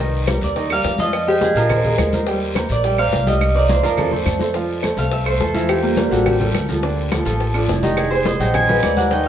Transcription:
Already playing: upright bass C2, harp B4 D5
0.00 grand piano D#3 D#4 D#5
0.14 high conga, maracas
0.27 grand piano G3 G4 A#4, high bongo, high conga, short guiro, claves, maracas
0.41 upright bass D#2, harp D5, high conga, short guiro, maracas
0.56 grand piano D#3 D#4 D#5, high bongo, high conga, long guiro, maracas
0.70 grand piano G3 G4 A#4, harp F5, high conga, claves, maracas
0.84 upright bass F2, high bongo, low bongo, high conga, short guiro, maracas
0.98 grand piano F3 F4 F5, harp D#5, high conga, short guiro, maracas
1.12 high bongo, high conga, long guiro, claves, maracas
1.27 grand piano G#3 G#4 C5, harp G4, high bongo, high conga, maracas
1.41 harp G#4, high bongo, high conga, short guiro, maracas
1.55 upright bass A#1, grand piano F3 F4 F5, harp A#4, high bongo, high conga, short guiro, maracas
1.69 harp C5, high bongo, high conga, low conga, long guiro, claves, maracas
1.84 grand piano G#3 G#4 A#4, high bongo, high conga, low conga, maracas
1.98 upright bass D#2, high bongo, low bongo, high conga, short guiro, claves, maracas
2.12 grand piano A#3 A#4 C5, high conga, short guiro, maracas
2.26 grand piano G3 G4 G5, high bongo, high conga, long guiro, maracas
2.42 high conga, maracas
2.55 grand piano A#3 A#4 C5, high bongo, high conga, short guiro, claves, maracas
2.69 upright bass A#1, harp D5, high conga, short guiro, maracas
2.84 grand piano G3 G4 G5, high bongo, high conga, long guiro, maracas
2.98 grand piano A#3 A#4 C5, harp F5, high conga, claves, maracas
3.12 upright bass C2, high bongo, low bongo, high conga, short guiro, maracas
3.27 grand piano G3 G4 G5, harp D#5, high conga, short guiro, maracas
3.41 high bongo, high conga, long guiro, claves, maracas
3.55 grand piano A#3 A#4 C5, harp D5, high bongo, high conga, maracas
3.69 harp C5, high bongo, high conga, short guiro, maracas
3.83 upright bass F2, grand piano F3 F4 F5, harp A#4, high bongo, high conga, short guiro, maracas
3.97 harp A4, low bongo, high conga, low conga, long guiro, claves, maracas
4.11 grand piano A3 A4 C5, low bongo, high conga, low conga, maracas
4.26 upright bass F2, low bongo, high conga, short guiro, claves, maracas
4.39 grand piano A3 A4 C5, low bongo, high conga, short guiro, maracas
4.54 grand piano F3 F4 F5, high bongo, high conga, long guiro, maracas
4.68 high conga, maracas
4.83 grand piano A3 A4 C5, high bongo, high conga, short guiro, claves, maracas
4.97 upright bass C2, grand piano A3 A4 C5, harp F5, high conga, short guiro, maracas
5.11 harp E5, high bongo, high conga, long guiro, maracas
5.26 grand piano A3 A4 C5, harp C5, high conga, claves, maracas
5.40 upright bass E2, harp A4, high bongo, low bongo, high conga, short guiro, maracas
5.54 grand piano E3 E4 E5, harp F4, high conga, short guiro, maracas
5.68 harp G4, high bongo, high conga, long guiro, claves, maracas
5.82 grand piano G3 G4 A#4, harp A#3, high bongo, high conga, maracas
5.97 harp D4, high bongo, high conga, short guiro, maracas
6.11 upright bass A1, grand piano G3 G4 A4, harp F#4, high conga, short guiro, maracas
6.26 harp G4, high bongo, high conga, low conga, long guiro, claves, maracas
6.40 grand piano G3 G4 A4, high bongo, high conga, low conga, maracas
6.54 upright bass D2, high bongo, low bongo, high conga, short guiro, claves, maracas
6.68 grand piano F3 F4 A4, high conga, short guiro, maracas
6.83 grand piano D3 D4 D5, high bongo, high conga, long guiro, maracas
6.97 high conga, maracas
7.11 grand piano F3 F4 A4, high bongo, high conga, short guiro, claves, maracas
7.25 upright bass A1, grand piano F3 F4 A4, short guiro, maracas
7.40 high bongo, high conga, long guiro, maracas
7.54 grand piano F3 F4 A4, harp D4, high conga, claves, maracas
7.68 upright bass F1, harp E4, high bongo, low bongo, high conga, short guiro, maracas
7.83 grand piano D#3 D#4 D#5, harp G4, high conga, short guiro, maracas
7.96 harp G#4, high bongo, high conga, long guiro, claves, maracas
8.10 grand piano G#3 G#4 C5, harp C5, high bongo, high conga, maracas
8.25 harp D#5, high bongo, high conga, short guiro, maracas
8.39 upright bass A#1, grand piano F#3 F#4 G#4, harp G5, high bongo, high conga, short guiro, maracas
8.54 harp G#5, high bongo, high conga, low conga, long guiro, claves, maracas
8.68 grand piano F#3 F#4 G#4, harp B4, high bongo, high conga, low conga, maracas
8.83 upright bass D#2, harp D5, high bongo, low bongo, high conga, short guiro, claves, maracas
8.97 grand piano G3 G4 A#4, harp F#5, high conga, short guiro, maracas
9.11 grand piano D#3 D#4 D#5, harp G5, high bongo, high conga, long guiro, maracas

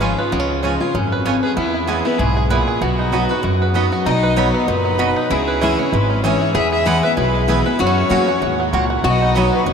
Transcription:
Already playing: upright bass G#1, steel-string acoustic guitar G#2, five-string banjo G#4 B4
0.00 steel-string acoustic guitar F3 G#3 C#4 F4, mandolin C#4 F4 C#5 G#5, five-string banjo C#4, fiddle G#4
0.18 fiddle F4, five-string banjo B4
0.32 upright bass C#2, steel-string acoustic guitar C#3, five-string banjo B3
0.40 five-string banjo C#4
0.63 steel-string acoustic guitar F3 G#3 C#4 F4, mandolin C#4 F4 C#5 G#5, five-string banjo C#4
0.80 steel-string acoustic guitar C#4 F4, five-string banjo G#4
0.94 upright bass G#1, steel-string acoustic guitar F#2, five-string banjo C#4
1.12 five-string banjo B4
1.25 steel-string acoustic guitar F2, five-string banjo C#4, mandolin C#4 F4 C#5 G#5
1.43 fiddle G#4, five-string banjo B4
1.57 upright bass E2, steel-string acoustic guitar E2, five-string banjo B3, fiddle E4
1.74 five-string banjo E4
1.87 steel-string acoustic guitar E3 G#3 B3 E4, mandolin B3 E4 B4 G#5, five-string banjo G#4
2.05 five-string banjo B3, steel-string acoustic guitar B3 E4, fiddle B4
2.19 upright bass B1, steel-string acoustic guitar G#2, five-string banjo E4, fiddle G#4
2.37 five-string banjo G#4
2.50 steel-string acoustic guitar A#2, mandolin B3 E4 B4 G#5, fiddle G#4, five-string banjo B4
2.68 five-string banjo G#4
2.81 upright bass B1, steel-string acoustic guitar B2, five-string banjo B3, fiddle F#4
2.99 five-string banjo D#4
3.12 steel-string acoustic guitar F#3 B3 D#4 F#4, mandolin B3 F#4 D#5 B5, five-string banjo F#4
3.29 steel-string acoustic guitar D#4 F#4, five-string banjo B4
3.43 steel-string acoustic guitar F#2, upright bass F#2, five-string banjo F#4
3.62 five-string banjo B4
3.74 steel-string acoustic guitar F#3 B3 D#4 F#4, mandolin B3 F#4 D#5 B5, five-string banjo B3
3.92 steel-string acoustic guitar D#4 F#4, five-string banjo F#4
4.06 upright bass B1, steel-string acoustic guitar B2, five-string banjo D#4, resonator guitar played with a steel bar D#4, fiddle D#5
4.23 five-string banjo B4
4.36 steel-string acoustic guitar F#3 B3 D#4 F#4, mandolin B3 F#4 D#5 B5, five-string banjo D#4, fiddle C#5
4.53 five-string banjo B3, fiddle B4
4.67 upright bass F#1, steel-string acoustic guitar A#2, five-string banjo D#4, fiddle B4
4.85 five-string banjo B3
4.98 steel-string acoustic guitar B2, mandolin B3 F#4 D#5 B5, five-string banjo F#4
5.16 five-string banjo D#4
5.30 upright bass C#2, steel-string acoustic guitar C#3, five-string banjo E4, resonator guitar played with a steel bar E4, fiddle G#4
5.48 five-string banjo B4
5.61 steel-string acoustic guitar E3 G#3 C#4 E4, mandolin C#4 G#4 E5 G#5, five-string banjo E4
5.79 five-string banjo C#4, steel-string acoustic guitar C#4 E4
5.92 upright bass G#1, steel-string acoustic guitar G#2, five-string banjo E4, fiddle B4
6.10 five-string banjo C#4
6.24 steel-string acoustic guitar E3 G#3 C#4 E4, mandolin C#4 G#4 E5 G#5, five-string banjo G#4, fiddle C#5
6.41 five-string banjo E4
6.55 upright bass E2, steel-string acoustic guitar E2, five-string banjo B3, resonator guitar played with a steel bar G#4, fiddle E5
6.72 five-string banjo G#4, fiddle E5
6.86 steel-string acoustic guitar E3 G#3 B3 E4, mandolin B3 E4 B4 G#5, five-string banjo B3, fiddle F#5
7.03 steel-string acoustic guitar B3 E4, five-string banjo B4, fiddle E5
7.17 upright bass B1, steel-string acoustic guitar B2, five-string banjo G#4, fiddle B4
7.35 five-string banjo G#3
7.48 steel-string acoustic guitar E3 G#3 B3 E4, mandolin B3 E4 B4 G#5, five-string banjo G#4, fiddle B4
7.65 steel-string acoustic guitar B3 E4, five-string banjo B4
7.79 steel-string acoustic guitar F#2, upright bass F#2, five-string banjo B3, resonator guitar played with a steel bar F#4, fiddle C#5
7.86 five-string banjo C#4
8.09 upright bass E2, steel-string acoustic guitar F#3 A#3 C#4 F#4, mandolin A#3 F#4 C#5 F#5, five-string banjo C#4
8.27 steel-string acoustic guitar C#4 F#4, five-string banjo F#4
8.41 upright bass D#2, steel-string acoustic guitar G#2, five-string banjo F#4
8.60 five-string banjo F#3
8.73 upright bass C#2, steel-string acoustic guitar A#2, mandolin A#3 F#4 C#5 F#5, five-string banjo F#4
8.90 five-string banjo F#4
9.04 upright bass B1, steel-string acoustic guitar B2, five-string banjo B3, resonator guitar played with a steel bar F#4, fiddle D#5
9.22 five-string banjo D#4
9.35 steel-string acoustic guitar F#3 B3 D#4 F#4, mandolin B3 F#4 D#5 B5, five-string banjo F#4, fiddle C#5
9.53 five-string banjo F#3, fiddle B4
9.66 upright bass F#1, steel-string acoustic guitar F#2, five-string banjo F#4, fiddle B4

